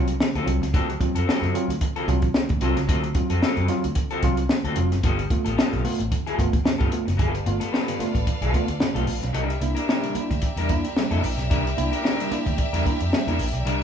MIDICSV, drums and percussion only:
0, 0, Header, 1, 2, 480
1, 0, Start_track
1, 0, Tempo, 538600
1, 656, Time_signature, 4, 2, 24, 8
1, 12326, End_track
2, 0, Start_track
2, 0, Title_t, "Drums"
2, 68, Note_on_c, 9, 42, 56
2, 157, Note_off_c, 9, 42, 0
2, 182, Note_on_c, 9, 38, 107
2, 271, Note_off_c, 9, 38, 0
2, 314, Note_on_c, 9, 42, 33
2, 403, Note_off_c, 9, 42, 0
2, 423, Note_on_c, 9, 42, 68
2, 512, Note_off_c, 9, 42, 0
2, 561, Note_on_c, 9, 38, 36
2, 562, Note_on_c, 9, 42, 55
2, 650, Note_off_c, 9, 38, 0
2, 651, Note_off_c, 9, 42, 0
2, 659, Note_on_c, 9, 36, 110
2, 662, Note_on_c, 9, 42, 86
2, 748, Note_off_c, 9, 36, 0
2, 751, Note_off_c, 9, 42, 0
2, 799, Note_on_c, 9, 42, 40
2, 889, Note_off_c, 9, 42, 0
2, 896, Note_on_c, 9, 36, 87
2, 899, Note_on_c, 9, 42, 72
2, 985, Note_off_c, 9, 36, 0
2, 988, Note_off_c, 9, 42, 0
2, 1031, Note_on_c, 9, 42, 66
2, 1120, Note_off_c, 9, 42, 0
2, 1149, Note_on_c, 9, 38, 115
2, 1238, Note_off_c, 9, 38, 0
2, 1276, Note_on_c, 9, 42, 39
2, 1366, Note_off_c, 9, 42, 0
2, 1382, Note_on_c, 9, 42, 67
2, 1471, Note_off_c, 9, 42, 0
2, 1518, Note_on_c, 9, 42, 56
2, 1607, Note_off_c, 9, 42, 0
2, 1613, Note_on_c, 9, 42, 84
2, 1616, Note_on_c, 9, 36, 76
2, 1702, Note_off_c, 9, 42, 0
2, 1705, Note_off_c, 9, 36, 0
2, 1748, Note_on_c, 9, 42, 37
2, 1837, Note_off_c, 9, 42, 0
2, 1854, Note_on_c, 9, 36, 84
2, 1859, Note_on_c, 9, 42, 71
2, 1944, Note_off_c, 9, 36, 0
2, 1948, Note_off_c, 9, 42, 0
2, 1978, Note_on_c, 9, 42, 48
2, 1984, Note_on_c, 9, 36, 87
2, 2068, Note_off_c, 9, 42, 0
2, 2073, Note_off_c, 9, 36, 0
2, 2088, Note_on_c, 9, 38, 120
2, 2177, Note_off_c, 9, 38, 0
2, 2220, Note_on_c, 9, 42, 36
2, 2229, Note_on_c, 9, 36, 96
2, 2309, Note_off_c, 9, 42, 0
2, 2318, Note_off_c, 9, 36, 0
2, 2325, Note_on_c, 9, 42, 74
2, 2414, Note_off_c, 9, 42, 0
2, 2467, Note_on_c, 9, 38, 36
2, 2468, Note_on_c, 9, 42, 49
2, 2556, Note_off_c, 9, 38, 0
2, 2557, Note_off_c, 9, 42, 0
2, 2573, Note_on_c, 9, 36, 111
2, 2576, Note_on_c, 9, 42, 91
2, 2662, Note_off_c, 9, 36, 0
2, 2665, Note_off_c, 9, 42, 0
2, 2706, Note_on_c, 9, 42, 35
2, 2795, Note_off_c, 9, 42, 0
2, 2804, Note_on_c, 9, 42, 72
2, 2807, Note_on_c, 9, 36, 93
2, 2893, Note_off_c, 9, 42, 0
2, 2896, Note_off_c, 9, 36, 0
2, 2940, Note_on_c, 9, 42, 63
2, 3029, Note_off_c, 9, 42, 0
2, 3052, Note_on_c, 9, 38, 96
2, 3141, Note_off_c, 9, 38, 0
2, 3180, Note_on_c, 9, 42, 34
2, 3270, Note_off_c, 9, 42, 0
2, 3282, Note_on_c, 9, 42, 68
2, 3285, Note_on_c, 9, 38, 28
2, 3371, Note_off_c, 9, 42, 0
2, 3374, Note_off_c, 9, 38, 0
2, 3422, Note_on_c, 9, 42, 55
2, 3512, Note_off_c, 9, 42, 0
2, 3522, Note_on_c, 9, 42, 79
2, 3529, Note_on_c, 9, 36, 83
2, 3611, Note_off_c, 9, 42, 0
2, 3619, Note_off_c, 9, 36, 0
2, 3658, Note_on_c, 9, 42, 35
2, 3747, Note_off_c, 9, 42, 0
2, 3765, Note_on_c, 9, 42, 78
2, 3768, Note_on_c, 9, 36, 78
2, 3855, Note_off_c, 9, 42, 0
2, 3857, Note_off_c, 9, 36, 0
2, 3896, Note_on_c, 9, 42, 48
2, 3986, Note_off_c, 9, 42, 0
2, 4005, Note_on_c, 9, 38, 119
2, 4094, Note_off_c, 9, 38, 0
2, 4140, Note_on_c, 9, 42, 39
2, 4229, Note_off_c, 9, 42, 0
2, 4239, Note_on_c, 9, 42, 70
2, 4328, Note_off_c, 9, 42, 0
2, 4383, Note_on_c, 9, 38, 35
2, 4385, Note_on_c, 9, 42, 50
2, 4472, Note_off_c, 9, 38, 0
2, 4474, Note_off_c, 9, 42, 0
2, 4486, Note_on_c, 9, 42, 91
2, 4489, Note_on_c, 9, 36, 113
2, 4575, Note_off_c, 9, 42, 0
2, 4578, Note_off_c, 9, 36, 0
2, 4624, Note_on_c, 9, 42, 43
2, 4713, Note_off_c, 9, 42, 0
2, 4727, Note_on_c, 9, 36, 99
2, 4727, Note_on_c, 9, 42, 71
2, 4816, Note_off_c, 9, 36, 0
2, 4816, Note_off_c, 9, 42, 0
2, 4862, Note_on_c, 9, 42, 63
2, 4952, Note_off_c, 9, 42, 0
2, 4978, Note_on_c, 9, 38, 118
2, 5067, Note_off_c, 9, 38, 0
2, 5108, Note_on_c, 9, 42, 34
2, 5197, Note_off_c, 9, 42, 0
2, 5211, Note_on_c, 9, 46, 74
2, 5300, Note_off_c, 9, 46, 0
2, 5349, Note_on_c, 9, 42, 61
2, 5439, Note_off_c, 9, 42, 0
2, 5452, Note_on_c, 9, 36, 77
2, 5452, Note_on_c, 9, 42, 89
2, 5541, Note_off_c, 9, 36, 0
2, 5541, Note_off_c, 9, 42, 0
2, 5590, Note_on_c, 9, 42, 37
2, 5679, Note_off_c, 9, 42, 0
2, 5693, Note_on_c, 9, 36, 85
2, 5699, Note_on_c, 9, 42, 71
2, 5782, Note_off_c, 9, 36, 0
2, 5788, Note_off_c, 9, 42, 0
2, 5822, Note_on_c, 9, 36, 91
2, 5823, Note_on_c, 9, 42, 48
2, 5912, Note_off_c, 9, 36, 0
2, 5912, Note_off_c, 9, 42, 0
2, 5931, Note_on_c, 9, 38, 119
2, 6020, Note_off_c, 9, 38, 0
2, 6063, Note_on_c, 9, 42, 34
2, 6067, Note_on_c, 9, 36, 105
2, 6153, Note_off_c, 9, 42, 0
2, 6156, Note_off_c, 9, 36, 0
2, 6165, Note_on_c, 9, 42, 71
2, 6254, Note_off_c, 9, 42, 0
2, 6308, Note_on_c, 9, 38, 37
2, 6310, Note_on_c, 9, 42, 52
2, 6398, Note_off_c, 9, 38, 0
2, 6399, Note_off_c, 9, 42, 0
2, 6409, Note_on_c, 9, 36, 111
2, 6410, Note_on_c, 9, 42, 79
2, 6498, Note_off_c, 9, 36, 0
2, 6499, Note_off_c, 9, 42, 0
2, 6547, Note_on_c, 9, 42, 55
2, 6637, Note_off_c, 9, 42, 0
2, 6651, Note_on_c, 9, 42, 70
2, 6740, Note_off_c, 9, 42, 0
2, 6782, Note_on_c, 9, 42, 57
2, 6871, Note_off_c, 9, 42, 0
2, 6898, Note_on_c, 9, 38, 104
2, 6987, Note_off_c, 9, 38, 0
2, 7025, Note_on_c, 9, 42, 63
2, 7114, Note_off_c, 9, 42, 0
2, 7131, Note_on_c, 9, 42, 63
2, 7134, Note_on_c, 9, 38, 28
2, 7220, Note_off_c, 9, 42, 0
2, 7224, Note_off_c, 9, 38, 0
2, 7262, Note_on_c, 9, 36, 79
2, 7267, Note_on_c, 9, 42, 54
2, 7351, Note_off_c, 9, 36, 0
2, 7356, Note_off_c, 9, 42, 0
2, 7371, Note_on_c, 9, 36, 84
2, 7371, Note_on_c, 9, 42, 83
2, 7460, Note_off_c, 9, 36, 0
2, 7460, Note_off_c, 9, 42, 0
2, 7504, Note_on_c, 9, 42, 59
2, 7593, Note_off_c, 9, 42, 0
2, 7611, Note_on_c, 9, 36, 83
2, 7613, Note_on_c, 9, 42, 67
2, 7700, Note_off_c, 9, 36, 0
2, 7702, Note_off_c, 9, 42, 0
2, 7738, Note_on_c, 9, 42, 50
2, 7827, Note_off_c, 9, 42, 0
2, 7846, Note_on_c, 9, 38, 113
2, 7935, Note_off_c, 9, 38, 0
2, 7984, Note_on_c, 9, 42, 50
2, 8073, Note_off_c, 9, 42, 0
2, 8085, Note_on_c, 9, 46, 68
2, 8174, Note_off_c, 9, 46, 0
2, 8229, Note_on_c, 9, 38, 35
2, 8230, Note_on_c, 9, 42, 56
2, 8318, Note_off_c, 9, 38, 0
2, 8320, Note_off_c, 9, 42, 0
2, 8329, Note_on_c, 9, 42, 84
2, 8418, Note_off_c, 9, 42, 0
2, 8468, Note_on_c, 9, 42, 53
2, 8557, Note_off_c, 9, 42, 0
2, 8568, Note_on_c, 9, 42, 68
2, 8657, Note_off_c, 9, 42, 0
2, 8703, Note_on_c, 9, 42, 62
2, 8792, Note_off_c, 9, 42, 0
2, 8814, Note_on_c, 9, 38, 103
2, 8903, Note_off_c, 9, 38, 0
2, 8944, Note_on_c, 9, 42, 59
2, 9033, Note_off_c, 9, 42, 0
2, 9046, Note_on_c, 9, 42, 63
2, 9135, Note_off_c, 9, 42, 0
2, 9185, Note_on_c, 9, 36, 82
2, 9188, Note_on_c, 9, 42, 56
2, 9274, Note_off_c, 9, 36, 0
2, 9277, Note_off_c, 9, 42, 0
2, 9283, Note_on_c, 9, 42, 91
2, 9293, Note_on_c, 9, 36, 78
2, 9372, Note_off_c, 9, 42, 0
2, 9382, Note_off_c, 9, 36, 0
2, 9422, Note_on_c, 9, 42, 60
2, 9512, Note_off_c, 9, 42, 0
2, 9529, Note_on_c, 9, 42, 75
2, 9533, Note_on_c, 9, 36, 81
2, 9618, Note_off_c, 9, 42, 0
2, 9622, Note_off_c, 9, 36, 0
2, 9666, Note_on_c, 9, 42, 50
2, 9755, Note_off_c, 9, 42, 0
2, 9772, Note_on_c, 9, 38, 103
2, 9861, Note_off_c, 9, 38, 0
2, 9905, Note_on_c, 9, 42, 47
2, 9994, Note_off_c, 9, 42, 0
2, 10015, Note_on_c, 9, 46, 66
2, 10104, Note_off_c, 9, 46, 0
2, 10150, Note_on_c, 9, 38, 35
2, 10152, Note_on_c, 9, 42, 49
2, 10240, Note_off_c, 9, 38, 0
2, 10241, Note_off_c, 9, 42, 0
2, 10257, Note_on_c, 9, 36, 114
2, 10258, Note_on_c, 9, 42, 84
2, 10346, Note_off_c, 9, 36, 0
2, 10347, Note_off_c, 9, 42, 0
2, 10400, Note_on_c, 9, 42, 51
2, 10489, Note_off_c, 9, 42, 0
2, 10499, Note_on_c, 9, 42, 70
2, 10588, Note_off_c, 9, 42, 0
2, 10631, Note_on_c, 9, 42, 63
2, 10721, Note_off_c, 9, 42, 0
2, 10740, Note_on_c, 9, 38, 97
2, 10829, Note_off_c, 9, 38, 0
2, 10875, Note_on_c, 9, 42, 59
2, 10964, Note_off_c, 9, 42, 0
2, 10976, Note_on_c, 9, 42, 75
2, 10979, Note_on_c, 9, 38, 31
2, 11065, Note_off_c, 9, 42, 0
2, 11068, Note_off_c, 9, 38, 0
2, 11109, Note_on_c, 9, 36, 85
2, 11113, Note_on_c, 9, 42, 48
2, 11198, Note_off_c, 9, 36, 0
2, 11202, Note_off_c, 9, 42, 0
2, 11212, Note_on_c, 9, 42, 79
2, 11218, Note_on_c, 9, 36, 84
2, 11301, Note_off_c, 9, 42, 0
2, 11307, Note_off_c, 9, 36, 0
2, 11354, Note_on_c, 9, 42, 57
2, 11443, Note_off_c, 9, 42, 0
2, 11460, Note_on_c, 9, 36, 83
2, 11463, Note_on_c, 9, 42, 76
2, 11549, Note_off_c, 9, 36, 0
2, 11552, Note_off_c, 9, 42, 0
2, 11589, Note_on_c, 9, 42, 48
2, 11679, Note_off_c, 9, 42, 0
2, 11702, Note_on_c, 9, 38, 112
2, 11791, Note_off_c, 9, 38, 0
2, 11835, Note_on_c, 9, 42, 49
2, 11924, Note_off_c, 9, 42, 0
2, 11935, Note_on_c, 9, 46, 67
2, 12025, Note_off_c, 9, 46, 0
2, 12075, Note_on_c, 9, 42, 51
2, 12164, Note_off_c, 9, 42, 0
2, 12181, Note_on_c, 9, 42, 85
2, 12270, Note_off_c, 9, 42, 0
2, 12326, End_track
0, 0, End_of_file